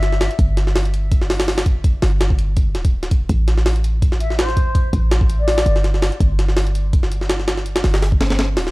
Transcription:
Already playing: G1 E5
0.03 snare, closed hi-hat
0.13 snare
0.21 snare, open hi-hat
0.31 closed hi-hat
0.39 G1, kick, closed hi-hat
0.57 snare, closed hi-hat
0.67 snare
0.76 snare, open hi-hat
0.85 closed hi-hat
0.94 closed hi-hat
1.12 kick, closed hi-hat
1.22 snare
1.30 snare, open hi-hat
1.40 snare, open hi-hat
1.48 snare, open hi-hat
1.58 snare, open hi-hat
1.66 kick, closed hi-hat
1.84 kick, closed hi-hat
2.02 G1, snare, open hi-hat
2.21 snare, closed hi-hat
2.30 kick
2.39 closed hi-hat
2.57 kick, closed hi-hat
2.75 D1, snare, closed hi-hat
2.85 kick, closed hi-hat
3.03 snare, closed hi-hat
3.11 F1, kick, closed hi-hat
3.29 A1, kick, closed hi-hat
3.48 snare, closed hi-hat
3.58 snare
3.66 snare, open hi-hat
3.76 closed hi-hat
3.84 closed hi-hat
4.02 kick, closed hi-hat
4.12 snare
4.20 E5, closed hi-hat
4.30 snare
4.38 C5, snare, closed hi-hat
4.49 snare
4.57 kick, closed hi-hat
4.75 kick, closed hi-hat
4.93 A1, kick, closed hi-hat
5.11 snare, closed hi-hat
5.21 kick
5.30 closed hi-hat
5.39 D5
5.48 snare, open hi-hat
5.58 snare, open hi-hat
5.66 G1, closed hi-hat
5.76 snare
5.84 snare, closed hi-hat
5.94 snare
6.02 snare, open hi-hat
6.12 closed hi-hat
6.20 G1, kick, closed hi-hat
6.39 snare, closed hi-hat
6.48 snare
6.57 snare, open hi-hat
6.67 closed hi-hat
6.75 closed hi-hat
6.93 kick, closed hi-hat
7.03 snare
7.12 closed hi-hat
7.21 snare
7.30 snare, closed hi-hat
7.40 snare
7.48 snare, closed hi-hat
7.57 snare
7.66 closed hi-hat
7.76 snare, closed hi-hat
7.84 G1, snare, open hi-hat
7.94 snare, open hi-hat
8.02 snare, open hi-hat
8.12 kick
8.21 snare, open hi-hat
8.30 snare, open hi-hat
8.39 snare, open hi-hat
8.57 D1, snare, open hi-hat
8.67 snare

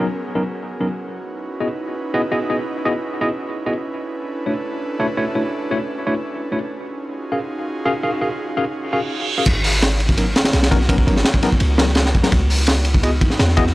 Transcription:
Already playing: B3 C#4 F#4 G#4 A#4
0.35 F#3 B3 C#4 D#4 A#4
0.81 F#3 B3 C#4 D#4 A#4
0.89 C#4 D#4 E4 B4
1.60 B3 E4 F#4 G#4 D#5
2.14 B3 E4 F#4 G#4 D#5
2.32 B3 E4 F#4 G#4 D#5
2.50 B3 E4 F#4 G#4 D#5
2.85 B3 E4 F#4 G#4 D#5
3.21 B3 E4 F#4 G#4 D#5
3.66 B3 E4 F#4 G#4 D#5
3.75 D4 A4 B4
4.46 A3 D4 E4 F#4 C#5
5.00 A3 D4 E4 F#4 C#5
5.17 A3 D4 E4 F#4 C#5
5.35 A3 D4 E4 F#4 C#5
5.71 A3 D4 E4 F#4 C#5
6.07 A3 D4 E4 F#4 C#5
6.52 A3 D4 E4 F#4 C#5
6.60 D#4 F4 F#4 G#4
7.32 C#4 F#4 G#4 A#4 F5
7.86 C#4 F#4 G#4 A#4 F5
8.03 C#4 F#4 G#4 A#4 F5
8.21 C#4 F#4 G#4 A#4 F5
8.57 C#4 F#4 G#4 A#4 F5
8.75 reverse cymbal
8.93 C#4 F#4 G#4 A#4 F5
9.38 C#4 F#4 G#4 A#4 F5
9.46 G#1 A#3 B3 C#4 F#4, kick, crash, ride, impact
9.64 open hi-hat
9.74 ride
9.82 snare, ride
10.00 ride
10.09 kick
10.17 F#3 B3 C#4 D#4 A#4, ride
10.36 snare, ride
10.45 snare, ride
10.53 B1, snare, ride
10.63 snare, ride
10.71 F#3 B3 C#4 D#4 A#4, kick, ride
10.81 snare
10.89 F#3 B3 C#4 D#4 A#4, kick, ride
10.98 kick
11.07 G#1 F#3 B3 C#4 D#4 A#4, ride
11.16 snare
11.25 snare, ride
11.34 kick
11.43 F#3 B3 C#4 D#4 A#4, snare, ride
11.52 kick
11.60 C#2, ride
11.78 F#3 B3 C#4 D#4 A#4, snare, ride
11.88 snare
11.95 snare, ride
12.05 snare
12.15 kick, ride
12.23 F#3 B3 C#4 D#4 A#4, snare, ride
12.32 C#2 D#4 E4, kick, ride
12.50 open hi-hat
12.58 ride
12.67 snare, ride
12.85 ride
12.94 kick
13.03 B3 E4 F#4 G#4 D#5, ride
13.21 kick, ride
13.30 snare
13.39 E2, snare, ride
13.49 snare
13.57 B3 E4 F#4 G#4 D#5, kick, ride
13.67 snare

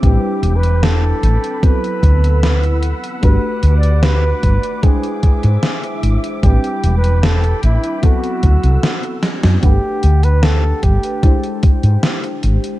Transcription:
Already playing: C4 D6
0.02 A1 G3 C4 D4 E4 G4 B4 G5 B5, kick, closed hi-hat
0.43 E1, closed hi-hat
0.57 B4
0.63 closed hi-hat
0.83 A4, snare, closed hi-hat
1.23 A1, closed hi-hat
1.44 closed hi-hat
1.62 F#3 B3 C4 E4 A4 B4 F#5 E6, kick, closed hi-hat
1.84 closed hi-hat
2.03 D2, kick, closed hi-hat
2.24 closed hi-hat
2.43 snare, closed hi-hat
2.63 closed hi-hat
2.83 closed hi-hat
3.04 closed hi-hat
3.21 G1 A3 D4 F#4 G4 B4 D6, kick, closed hi-hat
3.63 D2, closed hi-hat
3.77 D5
3.83 closed hi-hat
4.03 B4, snare, closed hi-hat
4.43 G1, kick, closed hi-hat
4.63 closed hi-hat
4.82 G#3 D4 E4 G#4 C5 E5 G5, kick, closed hi-hat
5.03 closed hi-hat
5.23 kick, closed hi-hat
5.43 G#2, closed hi-hat
5.63 snare, closed hi-hat
5.84 closed hi-hat
6.03 G#1, closed hi-hat
6.24 closed hi-hat
6.43 A1 G3 C4 D4 E4 G4 B4 G5 B5, kick, closed hi-hat
6.64 closed hi-hat
6.84 E1, closed hi-hat
6.97 B4
7.04 closed hi-hat
7.23 A4, snare, closed hi-hat
7.44 closed hi-hat
7.63 A1 E4, closed hi-hat
7.84 closed hi-hat
8.02 F#3 B3 C4 E4 F#4 A4 F#5 E6, kick, closed hi-hat
8.24 closed hi-hat
8.43 D2, kick, closed hi-hat
8.63 C2, closed hi-hat
8.83 snare, closed hi-hat
9.03 closed hi-hat
9.23 snare, closed hi-hat
9.43 F#2, snare, closed hi-hat
9.62 G1 A3 D4 G4 B4 F#5, kick, closed hi-hat
10.03 D2, closed hi-hat
10.23 B4, closed hi-hat
10.43 A4, snare, closed hi-hat
10.83 G1 G4, kick, closed hi-hat
11.03 closed hi-hat
11.22 G#3 D4 E4 G4 C5, kick, closed hi-hat
11.44 closed hi-hat
11.63 kick, closed hi-hat
11.83 G#2, closed hi-hat
12.03 snare, closed hi-hat
12.24 closed hi-hat
12.43 G#1, closed hi-hat
12.64 closed hi-hat

